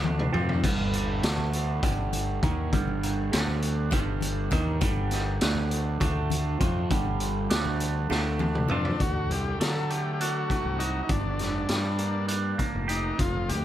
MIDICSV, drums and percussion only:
0, 0, Header, 1, 2, 480
1, 0, Start_track
1, 0, Key_signature, -2, "minor"
1, 0, Tempo, 598205
1, 513, Time_signature, 7, 3, 24, 8
1, 10952, End_track
2, 0, Start_track
2, 0, Title_t, "Drums"
2, 31, Note_on_c, 9, 63, 78
2, 32, Note_on_c, 9, 48, 67
2, 111, Note_off_c, 9, 63, 0
2, 112, Note_off_c, 9, 48, 0
2, 155, Note_on_c, 9, 47, 71
2, 235, Note_off_c, 9, 47, 0
2, 272, Note_on_c, 9, 45, 79
2, 272, Note_on_c, 9, 64, 74
2, 352, Note_off_c, 9, 45, 0
2, 352, Note_off_c, 9, 64, 0
2, 392, Note_on_c, 9, 64, 27
2, 393, Note_on_c, 9, 43, 73
2, 473, Note_off_c, 9, 43, 0
2, 473, Note_off_c, 9, 64, 0
2, 507, Note_on_c, 9, 63, 74
2, 511, Note_on_c, 9, 36, 97
2, 513, Note_on_c, 9, 42, 80
2, 513, Note_on_c, 9, 49, 78
2, 587, Note_off_c, 9, 63, 0
2, 591, Note_off_c, 9, 36, 0
2, 593, Note_off_c, 9, 42, 0
2, 593, Note_off_c, 9, 49, 0
2, 632, Note_on_c, 9, 64, 62
2, 712, Note_off_c, 9, 64, 0
2, 749, Note_on_c, 9, 42, 58
2, 830, Note_off_c, 9, 42, 0
2, 988, Note_on_c, 9, 42, 77
2, 994, Note_on_c, 9, 38, 111
2, 1069, Note_off_c, 9, 42, 0
2, 1074, Note_off_c, 9, 38, 0
2, 1107, Note_on_c, 9, 63, 62
2, 1107, Note_on_c, 9, 64, 60
2, 1187, Note_off_c, 9, 63, 0
2, 1187, Note_off_c, 9, 64, 0
2, 1229, Note_on_c, 9, 42, 57
2, 1309, Note_off_c, 9, 42, 0
2, 1468, Note_on_c, 9, 36, 103
2, 1468, Note_on_c, 9, 42, 74
2, 1468, Note_on_c, 9, 64, 88
2, 1548, Note_off_c, 9, 36, 0
2, 1548, Note_off_c, 9, 64, 0
2, 1549, Note_off_c, 9, 42, 0
2, 1708, Note_on_c, 9, 63, 81
2, 1709, Note_on_c, 9, 42, 59
2, 1788, Note_off_c, 9, 63, 0
2, 1790, Note_off_c, 9, 42, 0
2, 1949, Note_on_c, 9, 36, 95
2, 1950, Note_on_c, 9, 42, 54
2, 1952, Note_on_c, 9, 64, 93
2, 2029, Note_off_c, 9, 36, 0
2, 2031, Note_off_c, 9, 42, 0
2, 2032, Note_off_c, 9, 64, 0
2, 2189, Note_on_c, 9, 36, 97
2, 2190, Note_on_c, 9, 42, 75
2, 2190, Note_on_c, 9, 63, 93
2, 2269, Note_off_c, 9, 36, 0
2, 2270, Note_off_c, 9, 42, 0
2, 2270, Note_off_c, 9, 63, 0
2, 2309, Note_on_c, 9, 64, 73
2, 2389, Note_off_c, 9, 64, 0
2, 2433, Note_on_c, 9, 42, 60
2, 2513, Note_off_c, 9, 42, 0
2, 2671, Note_on_c, 9, 42, 83
2, 2676, Note_on_c, 9, 38, 116
2, 2751, Note_off_c, 9, 42, 0
2, 2757, Note_off_c, 9, 38, 0
2, 2784, Note_on_c, 9, 63, 68
2, 2784, Note_on_c, 9, 64, 66
2, 2864, Note_off_c, 9, 63, 0
2, 2864, Note_off_c, 9, 64, 0
2, 2907, Note_on_c, 9, 42, 65
2, 2988, Note_off_c, 9, 42, 0
2, 3137, Note_on_c, 9, 64, 93
2, 3147, Note_on_c, 9, 36, 100
2, 3149, Note_on_c, 9, 42, 85
2, 3217, Note_off_c, 9, 64, 0
2, 3227, Note_off_c, 9, 36, 0
2, 3229, Note_off_c, 9, 42, 0
2, 3377, Note_on_c, 9, 63, 86
2, 3387, Note_on_c, 9, 42, 66
2, 3457, Note_off_c, 9, 63, 0
2, 3468, Note_off_c, 9, 42, 0
2, 3617, Note_on_c, 9, 64, 93
2, 3625, Note_on_c, 9, 36, 94
2, 3626, Note_on_c, 9, 42, 62
2, 3697, Note_off_c, 9, 64, 0
2, 3705, Note_off_c, 9, 36, 0
2, 3706, Note_off_c, 9, 42, 0
2, 3860, Note_on_c, 9, 63, 88
2, 3863, Note_on_c, 9, 42, 81
2, 3864, Note_on_c, 9, 36, 100
2, 3940, Note_off_c, 9, 63, 0
2, 3943, Note_off_c, 9, 42, 0
2, 3945, Note_off_c, 9, 36, 0
2, 3981, Note_on_c, 9, 64, 67
2, 4062, Note_off_c, 9, 64, 0
2, 4099, Note_on_c, 9, 42, 54
2, 4105, Note_on_c, 9, 38, 31
2, 4179, Note_off_c, 9, 42, 0
2, 4185, Note_off_c, 9, 38, 0
2, 4340, Note_on_c, 9, 42, 82
2, 4346, Note_on_c, 9, 38, 110
2, 4421, Note_off_c, 9, 42, 0
2, 4426, Note_off_c, 9, 38, 0
2, 4454, Note_on_c, 9, 63, 68
2, 4454, Note_on_c, 9, 64, 69
2, 4534, Note_off_c, 9, 63, 0
2, 4534, Note_off_c, 9, 64, 0
2, 4582, Note_on_c, 9, 42, 63
2, 4663, Note_off_c, 9, 42, 0
2, 4817, Note_on_c, 9, 64, 94
2, 4822, Note_on_c, 9, 36, 100
2, 4822, Note_on_c, 9, 42, 73
2, 4897, Note_off_c, 9, 64, 0
2, 4902, Note_off_c, 9, 36, 0
2, 4903, Note_off_c, 9, 42, 0
2, 5057, Note_on_c, 9, 63, 93
2, 5065, Note_on_c, 9, 42, 59
2, 5137, Note_off_c, 9, 63, 0
2, 5146, Note_off_c, 9, 42, 0
2, 5300, Note_on_c, 9, 42, 57
2, 5301, Note_on_c, 9, 36, 96
2, 5301, Note_on_c, 9, 64, 92
2, 5380, Note_off_c, 9, 42, 0
2, 5381, Note_off_c, 9, 36, 0
2, 5381, Note_off_c, 9, 64, 0
2, 5538, Note_on_c, 9, 63, 94
2, 5542, Note_on_c, 9, 36, 93
2, 5543, Note_on_c, 9, 42, 73
2, 5618, Note_off_c, 9, 63, 0
2, 5622, Note_off_c, 9, 36, 0
2, 5623, Note_off_c, 9, 42, 0
2, 5657, Note_on_c, 9, 64, 68
2, 5737, Note_off_c, 9, 64, 0
2, 5778, Note_on_c, 9, 42, 56
2, 5858, Note_off_c, 9, 42, 0
2, 6019, Note_on_c, 9, 64, 29
2, 6021, Note_on_c, 9, 42, 81
2, 6026, Note_on_c, 9, 38, 107
2, 6099, Note_off_c, 9, 64, 0
2, 6101, Note_off_c, 9, 42, 0
2, 6107, Note_off_c, 9, 38, 0
2, 6142, Note_on_c, 9, 63, 63
2, 6142, Note_on_c, 9, 64, 71
2, 6222, Note_off_c, 9, 63, 0
2, 6222, Note_off_c, 9, 64, 0
2, 6260, Note_on_c, 9, 42, 59
2, 6340, Note_off_c, 9, 42, 0
2, 6498, Note_on_c, 9, 64, 86
2, 6508, Note_on_c, 9, 38, 60
2, 6578, Note_off_c, 9, 64, 0
2, 6589, Note_off_c, 9, 38, 0
2, 6620, Note_on_c, 9, 64, 26
2, 6700, Note_off_c, 9, 64, 0
2, 6735, Note_on_c, 9, 63, 76
2, 6740, Note_on_c, 9, 48, 73
2, 6815, Note_off_c, 9, 63, 0
2, 6820, Note_off_c, 9, 48, 0
2, 6862, Note_on_c, 9, 47, 72
2, 6942, Note_off_c, 9, 47, 0
2, 6969, Note_on_c, 9, 64, 81
2, 6976, Note_on_c, 9, 45, 80
2, 7049, Note_off_c, 9, 64, 0
2, 7056, Note_off_c, 9, 45, 0
2, 7100, Note_on_c, 9, 43, 83
2, 7180, Note_off_c, 9, 43, 0
2, 7223, Note_on_c, 9, 36, 89
2, 7223, Note_on_c, 9, 42, 78
2, 7304, Note_off_c, 9, 36, 0
2, 7304, Note_off_c, 9, 42, 0
2, 7468, Note_on_c, 9, 42, 53
2, 7548, Note_off_c, 9, 42, 0
2, 7709, Note_on_c, 9, 42, 78
2, 7714, Note_on_c, 9, 38, 100
2, 7789, Note_off_c, 9, 42, 0
2, 7795, Note_off_c, 9, 38, 0
2, 7946, Note_on_c, 9, 42, 55
2, 8027, Note_off_c, 9, 42, 0
2, 8188, Note_on_c, 9, 42, 72
2, 8269, Note_off_c, 9, 42, 0
2, 8425, Note_on_c, 9, 36, 64
2, 8429, Note_on_c, 9, 42, 54
2, 8505, Note_off_c, 9, 36, 0
2, 8510, Note_off_c, 9, 42, 0
2, 8665, Note_on_c, 9, 42, 53
2, 8745, Note_off_c, 9, 42, 0
2, 8898, Note_on_c, 9, 42, 68
2, 8902, Note_on_c, 9, 36, 97
2, 8979, Note_off_c, 9, 42, 0
2, 8982, Note_off_c, 9, 36, 0
2, 9140, Note_on_c, 9, 42, 48
2, 9146, Note_on_c, 9, 38, 27
2, 9221, Note_off_c, 9, 42, 0
2, 9226, Note_off_c, 9, 38, 0
2, 9376, Note_on_c, 9, 42, 74
2, 9382, Note_on_c, 9, 38, 94
2, 9456, Note_off_c, 9, 42, 0
2, 9462, Note_off_c, 9, 38, 0
2, 9617, Note_on_c, 9, 42, 51
2, 9697, Note_off_c, 9, 42, 0
2, 9856, Note_on_c, 9, 42, 67
2, 9936, Note_off_c, 9, 42, 0
2, 10101, Note_on_c, 9, 42, 56
2, 10102, Note_on_c, 9, 36, 66
2, 10182, Note_off_c, 9, 36, 0
2, 10182, Note_off_c, 9, 42, 0
2, 10341, Note_on_c, 9, 42, 53
2, 10421, Note_off_c, 9, 42, 0
2, 10584, Note_on_c, 9, 42, 73
2, 10585, Note_on_c, 9, 36, 89
2, 10664, Note_off_c, 9, 42, 0
2, 10665, Note_off_c, 9, 36, 0
2, 10826, Note_on_c, 9, 42, 58
2, 10907, Note_off_c, 9, 42, 0
2, 10952, End_track
0, 0, End_of_file